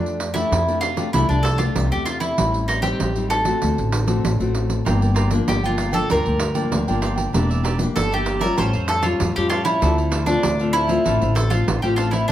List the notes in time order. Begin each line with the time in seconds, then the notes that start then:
Already playing: F2 F3 A3 D4 G4
0.06 pandeiro
0.20 pandeiro
0.34 A3 D4 E4 G4, pandeiro
0.52 F2 C3, pandeiro
0.67 A3 D4 G4, pandeiro
0.81 F4, pandeiro
0.96 A3 D4 G4, pandeiro
1.13 C2 F3 A3 D4 E4 G4, pandeiro
1.29 C2 D4, pandeiro
1.43 A4, pandeiro
1.58 A3 D4 F4 G4, pandeiro
1.75 C2 C3, pandeiro
1.92 A3 D4 G4, pandeiro
2.06 F4, pandeiro
2.20 E4, pandeiro
2.38 A1 A2 G3 C4, pandeiro
2.54 pandeiro
2.68 D#4, pandeiro
2.82 G3 C4 D#4 G4, pandeiro
3.00 A1 A2, pandeiro
3.16 G3 C4 D#4, pandeiro
3.30 A4, pandeiro
3.45 A3 C4 F#4, pandeiro
3.62 D2 D3, pandeiro
3.78 A1, pandeiro
3.92 pandeiro
4.07 A3 C4 F#4, pandeiro
4.24 A1 A2, pandeiro
4.40 A1 A3 C4 F#4, pandeiro
4.55 pandeiro
4.70 pandeiro
4.85 G1 G2 F3 A#3 D4 F4 A#4 D5 G5, pandeiro
5.01 A#4 D5 G5, pandeiro
5.15 F4 A#4 D5 G5, pandeiro
5.30 F3 A#3 D4, muted cavaquinho stroke, pandeiro
5.48 G1 D3 G4, pandeiro
5.63 F3 A#3 D4 F4 A#4 D5 G5, pandeiro
5.78 F4 A#4 D5 G5, pandeiro
5.92 F3 A#3 D4 A4 A#4 D5 G5, pandeiro
6.10 D2 G2 F3 A#3 D4 F4 A#4 D5 G5, pandeiro
6.26 D2 A#4 D5 G5, pandeiro
6.40 muted cavaquinho stroke, pandeiro
6.54 F3 A#3 D4 A#4 D5 G5, pandeiro
6.72 D2 D3, pandeiro
6.88 G1 F3 A#3 D4 A#4 D5 G5, pandeiro
7.02 F4 A#4 D5 G5, pandeiro
7.16 A#4 D5 G5, pandeiro
7.33 E1 E3 A#3 D4 G4 A#4 D5 E5, pandeiro
7.49 A#4 D5 E5, pandeiro
7.64 G4 A#4 D5 E5, pandeiro
7.78 A#3 D4 G4, muted cavaquinho stroke, pandeiro
7.96 G1 E3 A4, pandeiro
8.11 A#3 D4 G4 A#4 D5 E5, pandeiro
8.25 G4 A#4 D5 E5, pandeiro
8.39 G3 C#4 A#4 D5 E5, pandeiro
8.44 F4
8.56 A1 A2 G4 A4 C5 C#5 F5, pandeiro
8.73 F2 A4 C#5 F5, pandeiro
8.87 A4, muted cavaquinho stroke, pandeiro
9.02 G3 C#4 F4 A4 C#5 F5, pandeiro
9.20 F2 A2, pandeiro
9.35 F2 G3 C#4 F4 G4 A4 C#5 F5, pandeiro
9.49 F4 G4 A4 C#5 F5, pandeiro
9.64 E4 A4 C#5 F5, pandeiro
9.81 D2 D3 A3 C4 D4 F4 A4 C5 F5, pandeiro
9.98 A4, pandeiro
10.10 D4 A4 C5 F5, pandeiro
10.26 A3 C4 D4 F4, muted cavaquinho stroke, pandeiro
10.43 D2 A2, pandeiro
10.59 A3 C4 F4 A4 C5 F5, pandeiro
10.73 D4 E4 A4 C5 F5, pandeiro
10.87 A3 C4 F4 A4 C5 F5, pandeiro
11.04 A1 D3 A3 C4 D4 A4 C5 F5, pandeiro
11.21 A1 A4 C5 F5, pandeiro
11.35 A4, pandeiro
11.50 A3 C4 F4 A4 C5 F5, pandeiro
11.68 A1 A2, pandeiro
11.82 A1 A3 C4 F4 G4 A4 C5 F5, pandeiro
11.96 D4 F4 A4 C5 F5, pandeiro
12.11 E4 A4 C5 F5, pandeiro
12.28 D4